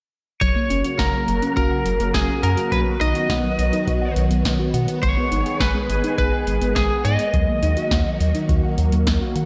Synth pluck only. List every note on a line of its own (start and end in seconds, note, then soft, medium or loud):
0.41 0.49 F#3 medium
0.56 0.63 A#3 medium
0.70 0.78 C#4 medium
0.85 0.92 F#4 medium
0.99 1.07 F#5 medium
1.14 1.21 F#3 medium
1.42 1.50 C#4 medium
1.57 1.65 F#4 medium
1.71 1.79 F#5 medium
1.86 1.93 F#3 medium
2.00 2.08 A#3 medium
2.29 2.37 F#4 medium
2.43 2.51 F#5 medium
2.58 2.65 F#3 medium
2.72 2.80 F#3 medium
2.86 2.94 B3 medium
3.01 3.09 D#4 medium
3.15 3.23 F#4 medium
3.30 3.37 F#5 medium
3.44 3.52 F#3 medium
3.73 3.81 D#4 medium
3.87 3.95 F#4 medium
4.02 4.09 F#5 medium
4.16 4.24 F#3 medium
4.31 4.38 B3 medium
4.59 4.67 F#4 medium
4.74 4.82 F#5 medium
4.88 4.96 F#3 medium
5.03 5.11 G#3 medium
5.17 5.25 B3 medium
5.32 5.39 D#4 medium
5.46 5.54 G#4 medium
5.61 5.68 G#5 medium
5.75 5.83 G#3 medium
6.04 6.12 D#4 medium
6.18 6.26 G#4 medium
6.33 6.40 G#5 medium
6.47 6.55 G#3 medium
6.62 6.69 B3 medium
6.90 6.98 G#4 medium
7.05 7.12 G#5 medium
7.19 7.27 G#3 medium
7.34 7.41 F#3 medium
7.48 7.56 A#3 medium
7.62 7.70 D#4 medium
7.77 7.85 F#4 medium
7.91 7.99 F#5 medium
8.06 8.13 F#3 medium
8.35 8.42 D#4 medium
8.49 8.57 F#4 medium
8.63 8.71 F#5 medium
8.78 8.86 F#3 medium
8.92 9.00 A#3 medium
9.21 9.29 F#4 medium
9.36 9.43 F#5 medium